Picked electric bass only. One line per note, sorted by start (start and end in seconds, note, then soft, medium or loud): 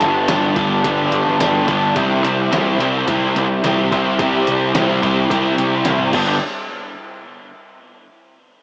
0.01 0.25 G1 loud
0.29 0.53 G1 medium
0.56 0.81 G1 medium
0.84 1.09 G1 medium
1.11 1.36 G1 medium
1.39 1.64 G1 medium
1.68 1.92 G1 medium
1.96 2.20 C2 loud
2.22 2.47 C2 loud
2.51 2.75 C2 medium
2.78 3.03 C2 medium
3.08 3.32 C2 medium
3.36 3.60 C2 medium
3.64 3.88 C2 medium
3.92 4.15 C2 medium
4.19 4.43 C2 loud
4.48 4.71 C2 loud
4.75 4.99 C2 medium
5.03 5.26 C2 medium
5.30 5.54 C2 medium
5.58 5.82 C2 medium
5.86 6.10 C2 medium
6.13 6.39 G1 loud